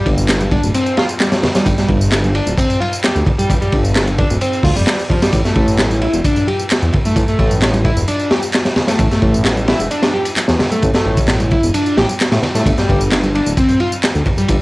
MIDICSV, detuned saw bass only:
0, 0, Header, 1, 2, 480
1, 0, Start_track
1, 0, Tempo, 458015
1, 1745, Time_signature, 4, 2, 24, 8
1, 15320, End_track
2, 0, Start_track
2, 0, Title_t, "Detuned saw bass"
2, 0, Program_c, 0, 39
2, 62, Note_on_c, 0, 31, 85
2, 604, Note_off_c, 0, 31, 0
2, 665, Note_on_c, 0, 26, 86
2, 746, Note_off_c, 0, 26, 0
2, 1739, Note_on_c, 0, 31, 95
2, 1826, Note_off_c, 0, 31, 0
2, 1977, Note_on_c, 0, 31, 87
2, 2522, Note_off_c, 0, 31, 0
2, 2585, Note_on_c, 0, 26, 90
2, 2666, Note_off_c, 0, 26, 0
2, 3306, Note_on_c, 0, 38, 81
2, 3387, Note_off_c, 0, 38, 0
2, 3664, Note_on_c, 0, 31, 99
2, 3749, Note_off_c, 0, 31, 0
2, 3905, Note_on_c, 0, 31, 87
2, 4446, Note_off_c, 0, 31, 0
2, 4508, Note_on_c, 0, 26, 88
2, 4588, Note_off_c, 0, 26, 0
2, 4854, Note_on_c, 0, 38, 103
2, 4944, Note_off_c, 0, 38, 0
2, 4987, Note_on_c, 0, 29, 99
2, 5067, Note_off_c, 0, 29, 0
2, 5584, Note_on_c, 0, 33, 100
2, 5669, Note_off_c, 0, 33, 0
2, 5825, Note_on_c, 0, 33, 88
2, 6365, Note_off_c, 0, 33, 0
2, 6427, Note_on_c, 0, 28, 90
2, 6507, Note_off_c, 0, 28, 0
2, 7149, Note_on_c, 0, 40, 83
2, 7228, Note_off_c, 0, 40, 0
2, 7502, Note_on_c, 0, 33, 99
2, 7588, Note_off_c, 0, 33, 0
2, 7743, Note_on_c, 0, 33, 87
2, 8285, Note_off_c, 0, 33, 0
2, 8344, Note_on_c, 0, 28, 86
2, 8426, Note_off_c, 0, 28, 0
2, 9422, Note_on_c, 0, 33, 99
2, 9508, Note_off_c, 0, 33, 0
2, 9664, Note_on_c, 0, 33, 87
2, 10205, Note_off_c, 0, 33, 0
2, 10270, Note_on_c, 0, 28, 88
2, 10348, Note_off_c, 0, 28, 0
2, 10990, Note_on_c, 0, 40, 80
2, 11068, Note_off_c, 0, 40, 0
2, 11349, Note_on_c, 0, 33, 98
2, 11431, Note_off_c, 0, 33, 0
2, 11584, Note_on_c, 0, 33, 89
2, 12125, Note_off_c, 0, 33, 0
2, 12191, Note_on_c, 0, 28, 89
2, 12269, Note_off_c, 0, 28, 0
2, 12545, Note_on_c, 0, 33, 94
2, 12629, Note_off_c, 0, 33, 0
2, 12907, Note_on_c, 0, 45, 89
2, 12987, Note_off_c, 0, 45, 0
2, 13149, Note_on_c, 0, 45, 86
2, 13228, Note_off_c, 0, 45, 0
2, 13263, Note_on_c, 0, 31, 98
2, 13348, Note_off_c, 0, 31, 0
2, 13509, Note_on_c, 0, 31, 88
2, 14048, Note_off_c, 0, 31, 0
2, 14108, Note_on_c, 0, 26, 87
2, 14188, Note_off_c, 0, 26, 0
2, 14828, Note_on_c, 0, 38, 83
2, 14907, Note_off_c, 0, 38, 0
2, 15187, Note_on_c, 0, 31, 100
2, 15270, Note_off_c, 0, 31, 0
2, 15320, End_track
0, 0, End_of_file